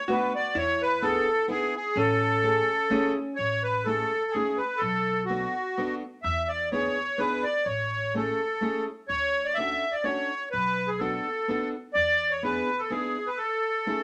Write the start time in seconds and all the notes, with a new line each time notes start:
0.08 A3 B3 D4 F#4 B4
0.35 D5
0.55 E2 E4 C#5
0.82 B4
1.02 B3 D4 E4 G#4 A4
1.48 B3 D4 E4 G#4
1.76 G#4
1.96 A1 C#4 A4
2.43 A3 C#4 E4 G#4
2.90 A3 C#4 E4 G#4
3.36 A1 C#5
3.63 B4
3.85 A3 C#4 E4 G#4 A4
4.31 A3 G#4
4.35 C#4 E4 G#4
4.57 B4
4.77 A4
4.82 B1
5.25 F#4
5.29 B3 D4 F#4 A4
5.77 B3 D4 F#4 A4
6.23 E2 E5
6.48 D5
6.72 B3 D4 E4 G#4 C#5
7.18 B3 D4 E4 G#4 B4
7.43 D5
7.65 A1 C#5
8.14 A3 C#4 E4 G#4 A4
8.61 A3 C#4 E4 G#4
9.08 D2 C#5
9.45 D5
9.54 C#4 E5
9.59 D4 F#4 A4
9.91 D5
10.04 C#4 D4 F#4 A4 C#5
10.51 B1 B4
10.88 G#4
10.99 B3 D4 F#4 A4
11.48 B3 D4 F#4 A4
11.94 E2 D5
12.31 C#5
12.43 B3 D4 E4 G#4 B4
12.79 A4
12.90 B3 D4 E4 G#4
13.27 B4
13.37 A4
13.86 A3 C#4 E4 G#4